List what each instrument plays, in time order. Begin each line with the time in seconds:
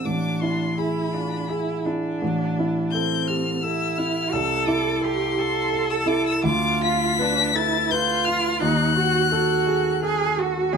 0.04 grand piano A1, cello D4, violin D6
0.41 grand piano E4, violin C6
0.78 cello E4, grand piano G#4, violin B5
1.13 cello D4, grand piano F4
1.48 cello E4, grand piano G#4
1.86 cello D4, grand piano E4
2.22 grand piano A1
2.59 grand piano E4
2.91 cello C4, grand piano A4, violin G6
3.28 grand piano G4, violin F6
3.63 cello E4, grand piano A4, violin E6
3.98 grand piano E4, violin F6
4.32 grand piano C2, cello A4, violin E6
4.67 grand piano E4, violin D6
5.01 cello G4, grand piano A4, violin C6
5.38 grand piano G4, cello A4
5.73 grand piano A4
5.90 violin E6
6.06 grand piano E4, violin D6
6.26 violin E6
6.44 grand piano D2, cello F4, violin D6
6.83 grand piano F4, violin B6
7.19 cello D4, grand piano B4
7.55 cello E4, grand piano A4, violin A6
7.91 cello F4, grand piano B4, violin G6
8.25 grand piano F4, violin F6
8.60 grand piano D#2, cello D#4, violin F#6
8.96 cello F#4, grand piano F#4
9.32 cello F#4, grand piano A4
9.67 grand piano G#4
10.02 cello G#4, grand piano A4
10.38 grand piano F#4, cello F#4
10.73 grand piano E2, cello G#4